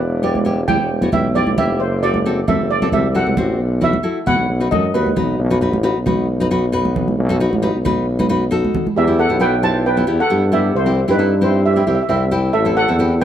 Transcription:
Already playing: B4
0.02 E1
0.23 B3 E4 G4 D5
0.35 high conga
0.45 B3 E4 G4
0.68 E2 B3 E4 G4 G5, high conga, low conga
0.81 E1
1.02 B3 E4 F#4, high conga
1.12 B1 B3 E4 G4 E5, high conga, low conga
1.35 B3 E4 G4 D5
1.47 B1, high conga
1.58 F1 B3 E4 G4 E5, low conga
1.80 F#1 C5
2.03 C4 F#4 A4 D5
2.14 high conga
2.26 C4 F#4 A4
2.48 F#2 C4 F#4 A4 E5, high conga, low conga
2.60 F#1
2.71 D5
2.82 C4 F#4 A4, high conga
2.92 C2 C4 F#4 A4 E5, high conga, low conga
3.15 C4 F#4 A4 F#5
3.27 C2, high conga
3.37 A1 C4 F#4 C5, low conga
3.60 B1
3.81 E4 F#4 B4 E5, low conga
3.93 high conga
4.03 E4 F#4 A4
4.26 B2 E4 F#4 B4 F#5, high conga, low conga
4.39 B1
4.50 B1
4.60 D#4 F#4 B4
4.71 F#2 D#4 F#4 A4 D#5, high conga, low conga
4.94 D#2 D#4 F#4 B4
5.06 high conga
5.16 B1 D#4 F#4 B4, low conga
5.39 B1
5.50 D#4 F#4 B4
5.61 D#4 F#4 B4
5.73 A1, high conga
5.83 D#4 F#4 B4
5.96 B1
6.06 D#4 F#4 B4, high conga, low conga
6.40 D#4 F#4 B4
6.51 D#4 F#4 B4
6.72 D#4 F#4 B4
6.85 high conga
6.96 low conga
7.08 high conga
7.18 B1
7.29 D#4 F#4 A4
7.40 D#4 F#4 B4
7.53 A1, high conga
7.62 D#4 F#4 B4
7.75 B1
7.85 D#4 F#4 B4, high conga, low conga
8.19 D#4 F#4 B4, high conga
8.29 D#4 F#4 B4
8.51 D#4 F#4 A4
8.64 high conga
8.75 low conga
8.87 high conga
8.96 E2 G4 E5
9.07 B3 E4 G4
9.19 A4 F#5
9.29 B1 B3 E4 G4
9.40 B3 E4 F#4 B4 G5
9.63 B3 E4 G4 C5 A5
9.86 B4 G5
9.97 B3 E4 G4
10.07 E2 B3 E4 G4
10.20 A4 F#5
10.30 G2 B3 E4 G4
10.52 B3 E4 G4 E5
10.75 C2 E4 C5
10.86 C4 E4 G4
11.08 G2 C4 E4 G4 B4
11.12 D#4
11.19 C4 E4 A4
11.41 C4 E4 G4 C5
11.45 E4
11.66 G4 E5
11.73 C4 E4 G4 E5
11.79 E5
11.87 C2 C4 E4 G4 E5
11.95 E5
12.03 E5
12.09 C2 C4 E4 G4 E5
12.16 E5
12.31 C4 E4 G4
12.53 A1 A4 E5
12.65 C4 E4 A4
12.77 A4 F#5
12.88 E2 C4 E4 A4
12.99 C4 E4 G4

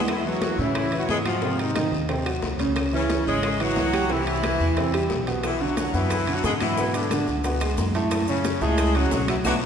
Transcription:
0.08 E3 E4, high bongo, high conga, high timbale, long guiro, claves
0.25 E3 F#3 E4 F#4, high conga
0.42 high bongo, high conga, high timbale, short guiro
0.58 A2 C#3 E3 C#4 E4, high conga, short guiro
0.75 high bongo, high conga, high timbale, long guiro, claves
0.92 E3 E4, high timbale
0.99 F#3 F#4
1.09 G#2 G#3 G#4, high bongo, low bongo, high conga, low timbale, short guiro
1.25 F3 F#3 F4 F#4, high conga, high timbale, short guiro, claves
1.42 C3 C4, high bongo, high conga, long guiro
1.59 D#3 D#4, high bongo, high conga, high timbale
1.76 D#3 D#4, high bongo, high conga, high timbale, short guiro, claves
1.92 D#2, high bongo, high conga, short guiro
2.09 C3 C4, high bongo, high conga, high timbale, long guiro
2.26 F#3 F#4, high bongo, high conga, high timbale, claves
2.42 C#2, high bongo, low bongo, high conga, short guiro
2.59 C#3 C#4, high conga, high timbale, short guiro
2.76 high bongo, high conga, high timbale, long guiro, claves
2.93 C#3 E3 C#4 E4, high conga
3.09 high bongo, high conga, high timbale, short guiro
3.26 G#1 C#3 G#3 C#4 G#4, high conga, short guiro
3.43 high bongo, high timbale, long guiro, claves
3.60 E3 F#3 E4 F#4, high conga, high timbale
3.76 C2, high bongo, low bongo, high conga, low timbale, short guiro
3.93 G3 G4, high conga, high timbale, short guiro, claves
4.10 C3 E3 C4 E4, high bongo, high conga, long guiro
4.26 high bongo, high conga, high timbale
4.43 E3 E4, high bongo, high conga, high timbale, short guiro, claves
4.60 E2, high bongo, high conga, short guiro
4.77 C3 C4, high bongo, high conga, high timbale, long guiro
4.93 G3 G4, high bongo, high conga, high timbale, claves
5.10 B1, high bongo, low bongo, high conga, short guiro
5.27 B2 B3, high timbale, short guiro
5.43 E3 E4, high bongo, high conga, high timbale, long guiro, claves, maracas
5.60 D3 F#3 D4 F#4, high conga
5.77 high bongo, high conga, high timbale, short guiro, maracas
5.94 F#2 B2 E3 B3 E4, high conga, short guiro, maracas
6.10 high bongo, high conga, high timbale, long guiro, claves, maracas
6.27 D3 D4, high conga, high timbale
6.34 F#3 F#4
6.44 G#2 G#3 G#4, high bongo, low bongo, high conga, low timbale, short guiro, maracas
6.61 E3 F#3 E4 F#4, high conga, high timbale, short guiro, claves, maracas
6.77 B2 B3, high bongo, high conga, long guiro, maracas
6.94 D3 D4, high bongo, high conga, high timbale, maracas
7.11 D3 D4, high bongo, high conga, high timbale, short guiro, claves, maracas
7.27 C#2, high bongo, high conga, short guiro, maracas
7.44 B2 B3, high bongo, high conga, high timbale, long guiro, maracas
7.61 G#3 G#4, high bongo, high conga, high timbale, claves, maracas
7.77 F#2, high bongo, low bongo, high conga, short guiro, maracas
7.94 A2 A3, high timbale, short guiro, maracas
8.11 high bongo, high timbale, long guiro, claves, maracas
8.27 C#3 C#4, maracas
8.44 high bongo, high conga, high timbale, short guiro, maracas
8.61 C#2 A2 G#3 A3 G#4, high conga, short guiro, maracas
8.78 high bongo, high conga, high timbale, long guiro, claves, maracas
8.95 C#3 F#3 C#4 F#4, high conga, high timbale
9.11 B1, high bongo, low bongo, high conga, low timbale, short guiro, maracas
9.28 E3 F#3 E4 F#4, high conga, high timbale, short guiro, claves, maracas
9.45 B1 F#3 A3 B3 D4 F#4, high bongo, high conga, high timbale, long guiro, claves, maracas

